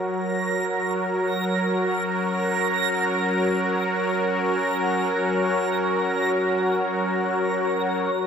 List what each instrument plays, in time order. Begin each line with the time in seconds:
Already playing: analog synth pad F#3 F#4 A#4 C#5, synth texture A#6
1.16 synth drone F#3 C#4